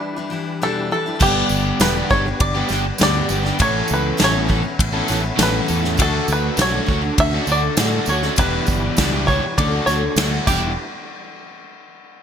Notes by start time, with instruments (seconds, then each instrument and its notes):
Already playing: steel-string acoustic guitar E3 G3 D4 E4, tonewheel organ D4 E4 G4 B4, five-string banjo B4
0.16 steel-string acoustic guitar E3 G3 D4 E4
0.30 steel-string acoustic guitar E3 G3 D4 E4
0.62 steel-string acoustic guitar E2 B2 E3 G3 D4 E4, five-string banjo A4
0.91 steel-string acoustic guitar E3 G3 D4 E4, five-string banjo A4
1.06 steel-string acoustic guitar E3 G3 D4 E4
1.20 fingered electric bass G1, steel-string acoustic guitar G2 D3 G3 B3 D4 G4, tonewheel organ B3 D4 G4 B4, five-string banjo G4, kick, tambourine, crash
1.49 fingered electric bass G1, tambourine
1.80 fingered electric bass E1, steel-string acoustic guitar G2 D3 G3 B3 D4 G4, five-string banjo B4, snare, ride bell, tambourine
1.95 steel-string acoustic guitar G3 B3 D4 G4
2.10 fingered electric bass G1, steel-string acoustic guitar G3 B3 D4 G4, five-string banjo C#5, kick, tambourine
2.25 steel-string acoustic guitar G3 B3 D4 G4, muted overdriven electric guitar stroke
2.40 fingered electric bass G1, five-string banjo D5, kick, ride bell
2.55 steel-string acoustic guitar G3 B3 D4 G4
2.69 fingered electric bass G1, steel-string acoustic guitar G3 B3 D4 G4, snare, tambourine
2.86 muted overdriven electric guitar stroke
2.98 fingered electric bass D2, steel-string acoustic guitar G2 D3 G3 B3 D4 G4, snare, ride bell, tambourine
3.03 five-string banjo D5
3.29 fingered electric bass G1, steel-string acoustic guitar G3 B3 D4 G4, tambourine
3.43 steel-string acoustic guitar G3 B3 D4 G4, snare
3.59 fingered electric bass A1, steel-string acoustic guitar A2 E3 B3 C#4 E4, overdriven electric guitar A3 A4, tonewheel organ C#4 E4 A4 B4, five-string banjo C#5, kick, ride bell, tambourine
3.88 fingered electric bass C#2, tambourine
3.94 five-string banjo B4
4.17 fingered electric bass A1, steel-string acoustic guitar A2 E3 B3 C#4 E4, overdriven electric guitar A3 A4, snare, ride bell, tambourine
4.24 five-string banjo C#5
4.32 overdriven electric guitar A3 A4, steel-string acoustic guitar B3 C#4 E4
4.47 steel-string acoustic guitar E3 B3 C#4 E4, overdriven electric guitar A3 A4, kick, tambourine
4.63 steel-string acoustic guitar B3 C#4 E4, muted overdriven electric guitar stroke
4.79 fingered electric bass A1, kick, ride bell
4.92 overdriven electric guitar A3 A4, steel-string acoustic guitar B3 C#4 E4
5.08 fingered electric bass A1, steel-string acoustic guitar E3 B3 C#4 E4, overdriven electric guitar A3 A4, snare, tambourine
5.22 steel-string acoustic guitar B3 C#4 E4, muted overdriven electric guitar stroke
5.38 fingered electric bass A1, steel-string acoustic guitar A2 E3 B3 C#4 E4, overdriven electric guitar A3 A4, snare, ride bell, tambourine
5.43 five-string banjo B4
5.67 fingered electric bass E2, steel-string acoustic guitar E3 B3 C#4 E4, overdriven electric guitar A3 A4, tambourine
5.81 overdriven electric guitar A3 A4, steel-string acoustic guitar B3 C#4 E4, snare
5.95 fingered electric bass D2, steel-string acoustic guitar D3 A3 F#4, tonewheel organ D4 F#4 A4, overdriven electric guitar D4, kick, tambourine
5.99 five-string banjo A4, ride bell
6.28 fingered electric bass D2, tambourine
6.33 five-string banjo B4
6.57 fingered electric bass B1, steel-string acoustic guitar D3 A3 C#4 F#4, overdriven electric guitar D4, snare, ride bell, tambourine
6.61 five-string banjo C#5
6.72 steel-string acoustic guitar A3 C#4 F#4, overdriven electric guitar D4
6.86 fingered electric bass D2, steel-string acoustic guitar D3 A3 C#4 F#4, overdriven electric guitar D4, kick, tambourine
7.02 steel-string acoustic guitar A3 F#4, muted overdriven electric guitar stroke
7.18 fingered electric bass D2, five-string banjo E5, kick, ride bell
7.32 steel-string acoustic guitar A3 C#4 F#4, overdriven electric guitar D4
7.46 fingered electric bass D2, steel-string acoustic guitar D3 A3 F#4, overdriven electric guitar D4, tambourine
7.52 five-string banjo D5
7.63 muted overdriven electric guitar stroke
7.77 fingered electric bass A2, steel-string acoustic guitar D3 A3 F#4, overdriven electric guitar D4, snare, ride bell, tambourine
8.06 fingered electric bass D2, steel-string acoustic guitar D3 A3 C#4 F#4, overdriven electric guitar D4, five-string banjo C#5, tambourine
8.22 steel-string acoustic guitar A3 C#4 F#4, overdriven electric guitar D4, snare
8.36 fingered electric bass E1, steel-string acoustic guitar E2 B2 E3 G3 D4 E4, overdriven electric guitar B3 G4, tonewheel organ D4 E4 G4 B4, five-string banjo B4, kick, ride bell, tambourine
8.67 fingered electric bass G1, kick, tambourine
8.97 fingered electric bass C#2, steel-string acoustic guitar E2 B2 E3 G3 D4 E4, overdriven electric guitar B3, kick, snare, ride bell, tambourine
9.01 overdriven electric guitar G4
9.12 steel-string acoustic guitar E3 G3 D4 E4, overdriven electric guitar B3 G4
9.26 steel-string acoustic guitar E3 G3 D4 E4, overdriven electric guitar B3 G4, five-string banjo C#5, kick, tambourine
9.45 muted overdriven electric guitar stroke
9.55 fingered electric bass D2, steel-string acoustic guitar D3 A3 C#4 F#4, tonewheel organ D4 F#4 A4, five-string banjo D5, kick, ride bell, tambourine
9.60 overdriven electric guitar D4
9.71 steel-string acoustic guitar A3 C#4 F#4, overdriven electric guitar D4
9.86 fingered electric bass D2, steel-string acoustic guitar D3 A3 F#4, overdriven electric guitar D4, five-string banjo C#5, snare, tambourine
10.04 muted overdriven electric guitar stroke
10.16 fingered electric bass D2, steel-string acoustic guitar D3 A3 F#4, overdriven electric guitar D4, snare, ride bell, tambourine
10.46 fingered electric bass E1, steel-string acoustic guitar E2 B2 E3 G3 D4 E4, overdriven electric guitar B3, tonewheel organ D4 E4 G4 B4, five-string banjo G4, kick, crash, tambourine